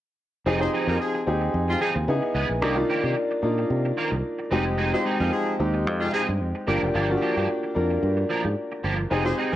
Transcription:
0.46 fingered electric bass F1, clean electric guitar F3 C4 D#4 G#4, grand piano C4 D#4 G4 G#4
0.60 horn section G#3 F4 C5, grand piano C4 D#4 G4 G#4, muted clean electric guitar stroke
0.73 clean electric guitar F3 C4 D#4 G#4
0.87 fingered electric bass F2, clean electric guitar F3 C4 D#4 G#4, horn section A#3 G4 A#4
1.00 horn section F3 D#4 G#4, muted clean electric guitar stroke
1.14 muted clean electric guitar stroke
1.27 fingered electric bass D#2, grand piano C4 D#4 G4 G#4
1.41 muted clean electric guitar stroke
1.54 fingered electric bass F2
1.68 horn section C3 G#3 F4, muted clean electric guitar stroke
1.80 clean electric guitar F3 C4 D#4 G#4, horn section F3 D#4 G#4
1.95 fingered electric bass D#2, muted clean electric guitar stroke
2.08 fingered electric bass C#3, grand piano B3 D#4 E4 G#4
2.22 muted clean electric guitar stroke
2.34 fingered electric bass C#2, clean electric guitar G#3 B3 E4 G#4
2.49 fingered electric bass A#1, muted clean electric guitar stroke
2.61 fingered electric bass C2, clean electric guitar D#3 A#3 C4 G4, grand piano A#3 D4 D#4 G4
2.75 grand piano A#3 D4 D#4 F4, muted clean electric guitar stroke
2.89 clean electric guitar D#3 A#3 C4 G4
3.04 fingered electric bass C3, clean electric guitar D#3 A#3 C4 G4
3.16 muted clean electric guitar stroke
3.31 muted clean electric guitar stroke
3.42 fingered electric bass A#2, grand piano A#3 D4 D#4 F4
3.58 muted clean electric guitar stroke
3.70 fingered electric bass C3
3.85 muted clean electric guitar stroke
3.97 clean electric guitar D#3 A#3 C4 A#4
4.11 fingered electric bass C2, muted clean electric guitar stroke
4.39 muted clean electric guitar stroke
4.51 fingered electric bass F1, clean electric guitar G#3 C4 D#4 G#4, grand piano G#3 C4 D#4 G4
4.66 muted clean electric guitar stroke
4.78 clean electric guitar G#3 C4 D#4 G#4
4.92 grand piano G#3 C4 D#4 G4, horn section G#3 F4 C5, muted clean electric guitar stroke
5.05 clean electric guitar G#3 C4 D#4 G#4
5.19 fingered electric bass F2, clean electric guitar G#3 C4 D#4 G#4, horn section A#3 G4 A#4
5.32 horn section F3 D#4 G#4, muted clean electric guitar stroke
5.46 muted clean electric guitar stroke
5.59 fingered electric bass D#2, grand piano G#3 C4 D#4 G4
5.74 muted clean electric guitar stroke
5.87 fingered electric bass F2
6.01 horn section C3 G#3 F4, muted clean electric guitar stroke
6.13 horn section F3 D#4 G#4, clean electric guitar G#3 C4 D#4 G#4
6.28 fingered electric bass G2, muted clean electric guitar stroke
6.41 fingered electric bass F2
6.55 muted clean electric guitar stroke
6.67 fingered electric bass G1, clean electric guitar F3 A#3 D4 G4, grand piano A#3 D4 F4 G4
6.82 fingered electric bass F1, muted clean electric guitar stroke
6.94 fingered electric bass G1, clean electric guitar F3 A#3 D4 G4
7.09 grand piano A#3 D4 F4 F#4, muted clean electric guitar stroke
7.17 clean electric guitar F3, grand piano G4
7.22 clean electric guitar A#3 D4 G4
7.36 fingered electric bass G2, clean electric guitar F3 A#3 D4 G4
7.49 muted clean electric guitar stroke
7.63 muted clean electric guitar stroke
7.75 fingered electric bass F2, grand piano A#3 D4 F4 A#4
7.90 muted clean electric guitar stroke
8.03 fingered electric bass G2
8.17 muted clean electric guitar stroke
8.29 clean electric guitar F3 A#3 D4 A#4
8.44 fingered electric bass G#2, muted clean electric guitar stroke
8.72 muted clean electric guitar stroke
8.84 fingered electric bass G1, clean electric guitar F3 A#3 D4 G4
8.98 muted clean electric guitar stroke
9.10 fingered electric bass F1, clean electric guitar G#3 C4 D#4 G#4, grand piano C4 D#4 G4 G#4
9.24 horn section G#3 F4 C5, grand piano C4 D#4 G4 G#4, muted clean electric guitar stroke
9.37 clean electric guitar G#3 C4 D#4 G#4
9.52 horn section A#3 G4 A#4, clean electric guitar D#4 G#4

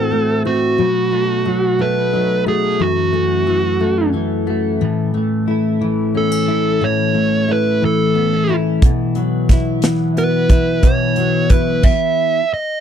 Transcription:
Already playing: clean electric guitar A2 E3 A3 C4, steel-string acoustic guitar E3 C4 E4 F#4, lead electric guitar A4
0.12 clean electric guitar A3, steel-string acoustic guitar E4
0.45 clean electric guitar C4, steel-string acoustic guitar F#4, lead electric guitar F#4
0.78 clean electric guitar B2, steel-string acoustic guitar F#3
1.12 clean electric guitar A3, steel-string acoustic guitar D#4
1.45 clean electric guitar F#3, steel-string acoustic guitar F#4
1.79 steel-string acoustic guitar A3, clean electric guitar A3, lead electric guitar B4
2.13 clean electric guitar F#3, steel-string acoustic guitar D#4
2.46 clean electric guitar A3, steel-string acoustic guitar F#4, lead electric guitar G#4
2.79 clean electric guitar F#2, steel-string acoustic guitar E3, lead electric guitar F#4
3.13 clean electric guitar A3, steel-string acoustic guitar C#4
3.47 clean electric guitar E3, steel-string acoustic guitar F#4
3.80 steel-string acoustic guitar A3, clean electric guitar A3
4.14 clean electric guitar E3, steel-string acoustic guitar C#4
4.47 clean electric guitar A3, steel-string acoustic guitar F#4
4.81 clean electric guitar A2, steel-string acoustic guitar E3
5.14 steel-string acoustic guitar E3, clean electric guitar A3
5.48 steel-string acoustic guitar A3, clean electric guitar E4
5.81 clean electric guitar E3, steel-string acoustic guitar E3
6.14 steel-string acoustic guitar B3, clean electric guitar C#4, lead electric guitar A4
6.31 steel-string acoustic guitar C#4
6.48 steel-string acoustic guitar A3, clean electric guitar E4
6.81 clean electric guitar A2, steel-string acoustic guitar E3, lead electric guitar C#5
7.15 steel-string acoustic guitar E3, clean electric guitar A3
7.48 steel-string acoustic guitar A3, clean electric guitar E4, lead electric guitar B4
7.82 clean electric guitar E3, steel-string acoustic guitar E3, lead electric guitar A4
8.15 clean electric guitar B3, steel-string acoustic guitar C#4
8.33 clean electric guitar C#4
8.49 steel-string acoustic guitar A3, clean electric guitar E4
8.82 clean electric guitar B2, steel-string acoustic guitar E3, kick, closed hi-hat
9.15 clean electric guitar F#3, steel-string acoustic guitar B3, closed hi-hat
9.49 steel-string acoustic guitar E4, clean electric guitar E4, kick, snare, closed hi-hat
9.82 clean electric guitar E3, steel-string acoustic guitar B3, snare, closed hi-hat
10.17 clean electric guitar B3, steel-string acoustic guitar F#4, lead electric guitar B4, closed hi-hat
10.49 clean electric guitar E4, steel-string acoustic guitar E4, kick, closed hi-hat
10.83 clean electric guitar B2, steel-string acoustic guitar E3, lead electric guitar C#5, kick, closed hi-hat
11.16 clean electric guitar F#3, steel-string acoustic guitar B3, closed hi-hat
11.50 steel-string acoustic guitar E4, clean electric guitar E4, lead electric guitar B4, kick, closed hi-hat
11.83 lead electric guitar E5, kick, crash
12.54 lead electric guitar D#5

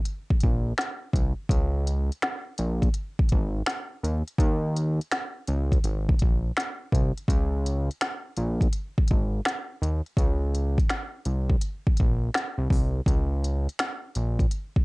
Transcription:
0.05 closed hi-hat
0.30 kick
0.40 analog synth bass A#1, kick, closed hi-hat
0.78 finger snap, snare, closed hi-hat
1.14 analog synth bass C2, kick, closed hi-hat
1.49 analog synth bass C#2, kick, closed hi-hat
1.87 closed hi-hat
2.12 closed hi-hat
2.22 finger snap, snare, closed hi-hat
2.58 analog synth bass A#1, closed hi-hat
2.82 kick, closed hi-hat
2.94 closed hi-hat
3.19 kick
3.29 analog synth bass G#1, kick, closed hi-hat
3.67 finger snap, snare, closed hi-hat
4.04 analog synth bass D#2, closed hi-hat
4.28 closed hi-hat
4.39 analog synth bass D#2, kick, closed hi-hat
4.76 closed hi-hat
5.01 closed hi-hat
5.12 finger snap, snare, closed hi-hat
5.47 analog synth bass C#2, closed hi-hat
5.72 kick, closed hi-hat
5.84 analog synth bass G#1, closed hi-hat
6.09 kick
6.19 analog synth bass A#1, kick, closed hi-hat
6.57 finger snap, snare, closed hi-hat
6.92 analog synth bass C2, kick, closed hi-hat
7.17 closed hi-hat
7.28 analog synth bass C#2, kick, closed hi-hat
7.66 closed hi-hat
7.91 closed hi-hat
8.01 finger snap, snare, closed hi-hat
8.37 analog synth bass A#1, closed hi-hat
8.61 kick, closed hi-hat
8.73 closed hi-hat
8.98 kick
9.08 analog synth bass G#1, kick, closed hi-hat
9.45 finger snap, snare, closed hi-hat
9.82 analog synth bass D#2, closed hi-hat
10.06 closed hi-hat
10.17 analog synth bass C#2, kick, closed hi-hat
10.55 closed hi-hat
10.78 kick, closed hi-hat
10.90 finger snap, snare, closed hi-hat
11.25 analog synth bass C2, closed hi-hat
11.50 kick
11.62 closed hi-hat
11.87 kick
11.97 analog synth bass A#1, kick, closed hi-hat
12.34 finger snap, snare, closed hi-hat
12.58 analog synth bass C2
12.70 analog synth bass C2, kick, open hi-hat
13.06 analog synth bass C#2, kick, closed hi-hat
13.44 closed hi-hat
13.69 closed hi-hat
13.79 finger snap, snare, closed hi-hat
14.15 analog synth bass A#1, closed hi-hat
14.39 kick, closed hi-hat
14.51 closed hi-hat
14.76 kick

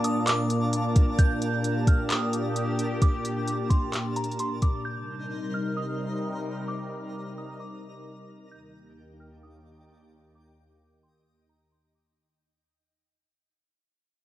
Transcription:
Already playing: analog synth pad A#2 A#3 D4 A5, synth texture D4 A#4 A5, downlifter
0.04 synth bell D#6, closed hi-hat
0.27 synth bell D6, clap, closed hi-hat
0.50 closed hi-hat
0.73 closed hi-hat
0.96 kick, closed hi-hat
1.19 analog synth pad G4, synth bell G6, kick, closed hi-hat
1.42 closed hi-hat
1.64 closed hi-hat
1.87 synth bell F6, kick, closed hi-hat
2.10 synth bell D#6, clap, closed hi-hat
2.33 closed hi-hat
2.56 closed hi-hat
2.79 closed hi-hat
3.02 synth bell D6, kick, closed hi-hat
3.25 closed hi-hat
3.48 closed hi-hat
3.70 synth bell C6, kick, closed hi-hat
3.93 clap, closed hi-hat
4.16 synth bell A#5, closed hi-hat
4.24 closed hi-hat
4.32 closed hi-hat
4.39 synth bell C6, closed hi-hat
4.62 synth bell D6, kick, closed hi-hat
4.85 analog synth pad C3 G3 D#4 A#4, synth texture D#4 C5 A#5, synth bell G6
5.54 synth bell F6
5.77 synth bell D#6
6.68 synth texture A#4, synth bell D6
7.38 synth bell D#6
7.60 synth bell D6
8.51 analog synth pad D#2 D#3 A#3 G4, synth texture D4 G5, synth bell G6
9.20 synth bell F6
9.43 synth bell D#6
10.35 synth texture D#5, synth bell D6
11.03 synth bell C6
11.49 synth bell A#5
11.72 synth bell C6
11.95 synth bell D6

